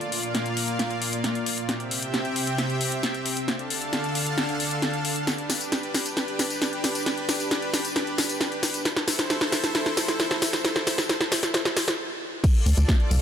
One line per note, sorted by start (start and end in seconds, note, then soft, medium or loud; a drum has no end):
0.00 1.67 A#2 medium
0.00 1.67 A#3 medium
0.00 1.65 F4 medium
0.00 1.65 D5 medium
0.00 1.67 F5 medium
0.00 closed hi-hat soft
0.12 open hi-hat loud
0.23 closed hi-hat medium
0.35 snare medium
0.35 closed hi-hat medium
0.46 closed hi-hat soft
0.57 open hi-hat medium
0.68 closed hi-hat medium
0.79 snare medium
0.79 closed hi-hat medium
0.90 closed hi-hat soft
1.02 open hi-hat loud
1.13 closed hi-hat medium
1.24 snare medium
1.24 closed hi-hat medium
1.35 closed hi-hat soft
1.46 open hi-hat medium
1.58 closed hi-hat medium
1.69 3.46 C3 medium
1.69 3.46 C4 medium
1.69 3.46 G4 medium
1.69 3.46 E5 medium
1.69 3.46 G5 medium
1.69 snare medium
1.69 closed hi-hat soft
1.80 closed hi-hat soft
1.91 open hi-hat loud
2.02 closed hi-hat medium
2.14 snare medium
2.14 closed hi-hat soft
2.25 closed hi-hat soft
2.36 open hi-hat medium
2.47 closed hi-hat soft
2.58 snare medium
2.58 closed hi-hat soft
2.70 closed hi-hat soft
2.81 open hi-hat loud
2.92 closed hi-hat soft
3.03 snare medium
3.03 closed hi-hat medium
3.14 closed hi-hat soft
3.26 open hi-hat loud
3.37 closed hi-hat soft
3.48 5.25 D3 medium
3.48 5.25 D4 medium
3.48 5.25 A4 medium
3.48 5.25 F5 medium
3.48 5.25 A5 medium
3.48 snare medium
3.48 closed hi-hat soft
3.59 closed hi-hat soft
3.70 open hi-hat loud
3.82 closed hi-hat soft
3.93 snare medium
3.93 closed hi-hat soft
4.04 closed hi-hat soft
4.15 open hi-hat medium
4.26 closed hi-hat soft
4.38 snare medium
4.38 closed hi-hat soft
4.49 closed hi-hat soft
4.60 open hi-hat loud
4.71 closed hi-hat soft
4.82 snare medium
4.82 closed hi-hat soft
4.94 closed hi-hat soft
5.05 open hi-hat medium
5.16 closed hi-hat soft
5.27 8.82 D4 medium
5.27 8.82 G4 medium
5.27 8.82 B4 medium
5.27 snare medium
5.27 closed hi-hat soft
5.27 tambourine soft
5.38 closed hi-hat soft
5.50 snare medium
5.50 open hi-hat loud
5.50 tambourine medium
5.61 closed hi-hat soft
5.61 tambourine soft
5.72 snare medium
5.72 closed hi-hat soft
5.72 tambourine soft
5.83 closed hi-hat soft
5.94 snare medium
5.94 open hi-hat medium
5.94 tambourine medium
6.06 closed hi-hat soft
6.06 tambourine soft
6.17 snare medium
6.17 closed hi-hat soft
6.17 tambourine soft
6.28 closed hi-hat soft
6.39 snare medium
6.39 open hi-hat loud
6.39 tambourine medium
6.50 closed hi-hat soft
6.50 tambourine soft
6.62 snare medium
6.62 closed hi-hat soft
6.62 tambourine soft
6.73 closed hi-hat soft
6.84 snare medium
6.84 open hi-hat medium
6.84 tambourine medium
6.95 closed hi-hat soft
6.95 tambourine soft
7.06 snare medium
7.06 closed hi-hat medium
7.06 tambourine soft
7.18 closed hi-hat soft
7.29 snare medium
7.29 open hi-hat loud
7.29 tambourine medium
7.40 closed hi-hat medium
7.40 tambourine soft
7.51 snare medium
7.51 closed hi-hat medium
7.51 tambourine soft
7.62 closed hi-hat soft
7.74 snare medium
7.74 open hi-hat medium
7.74 tambourine medium
7.85 closed hi-hat medium
7.85 tambourine soft
7.96 snare medium
7.96 closed hi-hat medium
7.96 tambourine soft
8.07 closed hi-hat soft
8.18 snare medium
8.18 open hi-hat loud
8.18 tambourine medium
8.29 closed hi-hat medium
8.29 tambourine soft
8.41 snare medium
8.41 closed hi-hat medium
8.41 tambourine soft
8.52 closed hi-hat soft
8.63 snare medium
8.63 open hi-hat medium
8.63 tambourine medium
8.74 closed hi-hat medium
8.74 tambourine soft
8.85 11.96 E4 medium
8.85 11.96 A4 medium
8.85 11.96 C5 medium
8.85 snare medium
8.85 closed hi-hat medium
8.85 tambourine soft
8.96 snare medium
8.96 closed hi-hat soft
9.08 snare medium
9.08 open hi-hat loud
9.08 tambourine medium
9.19 snare medium
9.19 closed hi-hat medium
9.19 tambourine soft
9.30 snare loud
9.30 closed hi-hat medium
9.30 tambourine soft
9.41 snare medium
9.41 closed hi-hat soft
9.52 snare loud
9.52 open hi-hat medium
9.52 tambourine medium
9.64 snare medium
9.64 closed hi-hat medium
9.64 tambourine soft
9.75 snare medium
9.75 closed hi-hat medium
9.75 tambourine soft
9.86 snare medium
9.86 closed hi-hat soft
9.97 snare loud
9.97 open hi-hat loud
9.97 tambourine medium
10.08 snare medium
10.08 closed hi-hat medium
10.08 tambourine soft
10.20 snare loud
10.20 closed hi-hat medium
10.20 tambourine soft
10.31 snare medium
10.31 closed hi-hat soft
10.42 snare loud
10.42 open hi-hat medium
10.42 tambourine medium
10.53 snare medium
10.53 closed hi-hat medium
10.53 tambourine soft
10.65 snare loud
10.65 closed hi-hat medium
10.65 tambourine soft
10.76 snare medium
10.76 closed hi-hat soft
10.87 snare loud
10.87 open hi-hat loud
10.87 tambourine medium
10.98 snare medium
10.98 closed hi-hat medium
10.98 tambourine soft
11.09 snare loud
11.09 closed hi-hat medium
11.09 tambourine soft
11.21 snare medium
11.21 closed hi-hat soft
11.32 snare loud
11.32 open hi-hat medium
11.32 tambourine medium
11.43 snare medium
11.43 closed hi-hat medium
11.43 tambourine soft
11.54 snare loud
11.54 closed hi-hat medium
11.54 tambourine soft
11.65 snare medium
11.65 closed hi-hat soft
11.77 snare loud
11.77 open hi-hat loud
11.77 tambourine medium
11.88 snare loud
11.88 closed hi-hat medium
11.88 tambourine soft
12.44 13.22 F4 medium
12.44 13.22 A4 medium
12.44 13.22 D5 medium
12.44 kick loud
12.44 closed hi-hat medium
12.44 crash loud
12.44 tambourine soft
12.55 closed hi-hat soft
12.66 12.73 D2 loud
12.66 open hi-hat loud
12.66 tambourine medium
12.77 12.84 D2 medium
12.77 closed hi-hat medium
12.77 tambourine soft
12.88 kick loud
12.88 snare loud
12.88 closed hi-hat medium
12.88 tambourine soft
13.00 closed hi-hat soft
13.11 13.18 C2 loud
13.11 open hi-hat medium
13.11 tambourine medium